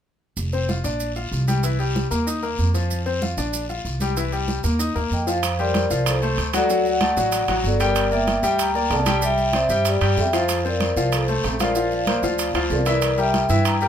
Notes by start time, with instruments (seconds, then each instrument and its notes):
0.37 upright bass F1, high conga, long guiro, maracas
0.53 grand piano C4 C5, high conga, maracas
0.68 grand piano F4 F5, high conga, short guiro, maracas
0.84 upright bass A#1, grand piano D4 D5, short guiro, maracas
1.00 high conga, long guiro, maracas
1.16 grand piano F4 F5, high conga, maracas
1.32 upright bass C2, high conga, short guiro, maracas
1.48 grand piano G3 G4, high conga, short guiro, maracas
1.63 grand piano E3 E4, long guiro, maracas
1.79 grand piano G3 G4, high conga, maracas
1.96 high conga, short guiro, maracas
2.11 upright bass D#2, grand piano A#3 A#4, high conga, short guiro, maracas
2.27 grand piano D#4 D#5, high conga, long guiro, maracas
2.43 grand piano A#3 A#4, high conga, maracas
2.58 upright bass F2, high conga, short guiro, maracas
2.74 grand piano F3 F4, high conga, short guiro, maracas
2.90 high conga, long guiro, maracas
3.06 grand piano C4 C5, high conga, maracas
3.22 grand piano F4 F5, high conga, short guiro, maracas
3.37 upright bass A#1, grand piano D4 D5, short guiro, maracas
3.53 high conga, long guiro, maracas
3.69 grand piano F4 F5, high conga, maracas
3.85 upright bass C2, high conga, short guiro, maracas
4.00 grand piano G3 G4, high conga, short guiro, maracas
4.17 grand piano E3 E4, long guiro, maracas
4.32 grand piano G3 G4, high conga, maracas
4.48 high conga, short guiro, maracas
4.64 upright bass D#2, grand piano A#3 A#4, high conga, short guiro, maracas
4.79 grand piano D#4 D#5, high conga, long guiro, maracas
4.95 upright bass D#2, grand piano A#3 A#4, high conga, maracas
5.11 upright bass F2, vibraphone D#5 G5, high conga, short guiro, maracas
5.27 grand piano F3 F4, vibraphone C5 F5, high conga, short guiro, maracas
5.43 high conga, high timbale, long guiro, maracas
5.59 grand piano G3 G4 C5, vibraphone A#4 D5, high conga, maracas
5.74 high conga, high timbale, short guiro, maracas
5.90 upright bass C2, grand piano F3 F4 F5, short guiro, maracas
6.06 vibraphone A4 C5, high conga, high timbale, long guiro, maracas
6.22 grand piano A3 A4 C5, high conga, maracas
6.38 upright bass D2, high conga, high timbale, short guiro, maracas
6.53 grand piano F#3 F#4 F#5, vibraphone A4 D5, high conga, high timbale, short guiro, maracas
6.69 grand piano F#3 F#4 F#5, high conga, long guiro, maracas
6.85 vibraphone D5 F#5, high conga, maracas
7.01 grand piano A3 A4 D5, high conga, high timbale, short guiro, maracas
7.17 upright bass A1, grand piano F#3 F#4 F#5, high conga, short guiro, maracas
7.32 high conga, high timbale, long guiro, maracas
7.48 upright bass A1, grand piano F#3 F#4 F#5, high conga, high timbale, maracas
7.64 upright bass G1, vibraphone A4 D5, high conga, short guiro, maracas
7.80 grand piano G3 G4 G5, vibraphone A#4 D5, high conga, high timbale, short guiro, maracas
7.96 high conga, high timbale, long guiro, maracas
8.11 grand piano A#3 A#4 D5, vibraphone E5 G5, high conga, maracas
8.27 high conga, high timbale, short guiro, maracas
8.43 upright bass D2, grand piano G3 G4 G5, short guiro, maracas
8.59 vibraphone G5 A#5, high conga, high timbale, long guiro, maracas
8.74 grand piano A#3 A#4 D5, vibraphone G5 A#5, high conga, maracas
8.90 upright bass C2, vibraphone D5 A5, high conga, high timbale, low timbale, short guiro, maracas
9.06 grand piano G3 G4 G5, high conga, high timbale, short guiro, maracas
9.22 grand piano G3 G4 G5, vibraphone E5 G5, high conga, long guiro, maracas
9.37 high conga, maracas
9.53 grand piano C4 C5 D5, vibraphone C5 E5, high conga, high timbale, short guiro, maracas
9.69 upright bass G2, grand piano G3 G4 G5, high conga, short guiro, maracas
9.85 vibraphone G4 D5, high conga, high timbale, long guiro, maracas
10.01 upright bass G2, grand piano G3 G4 G5, high conga, high timbale, maracas
10.17 upright bass F2, vibraphone E5 G5, high conga, low timbale, short guiro, maracas
10.33 grand piano F3 F4 F5, vibraphone C5 F5, high conga, high timbale, short guiro, maracas
10.49 high conga, high timbale, long guiro, maracas
10.65 grand piano C4 F4 C5, vibraphone A#4 D5, high conga, maracas
10.80 high conga, high timbale, short guiro, maracas
10.96 upright bass C2, grand piano F3 F4 F5, short guiro, maracas
11.12 vibraphone A4 C5, high conga, high timbale, long guiro, maracas
11.28 grand piano A3 A4 C5, high conga, maracas
11.44 upright bass A#1, high conga, high timbale, low timbale, short guiro, maracas
11.60 grand piano F3 F4 F5, vibraphone A#4 D5, high conga, high timbale, short guiro, maracas
11.75 grand piano F3 F4 F5, long guiro, maracas
11.91 vibraphone D5 F5, high conga, maracas
12.07 grand piano A#3 A#4 C5, high conga, high timbale, short guiro, maracas
12.22 upright bass D2, grand piano F3 F4 F5, high conga, short guiro, maracas
12.39 high conga, high timbale, long guiro, maracas
12.54 upright bass D2, grand piano F3 F4 F5, high conga, high timbale, maracas
12.70 upright bass C2, vibraphone A#4 D5, high conga, low timbale, short guiro, maracas
12.86 grand piano E3 E4 E5, vibraphone A#4 D5, high conga, high timbale, short guiro, maracas
13.02 high conga, high timbale, long guiro, maracas
13.18 grand piano G3 G4 A#4, vibraphone E5 G5, high conga, maracas
13.34 high conga, high timbale, short guiro, maracas
13.49 upright bass G2, grand piano E3 E4 E5, short guiro, maracas
13.65 vibraphone G5 A#5, high conga, high timbale, long guiro, maracas
13.81 grand piano G3 G4 A#4, vibraphone G5 A#5, high conga, maracas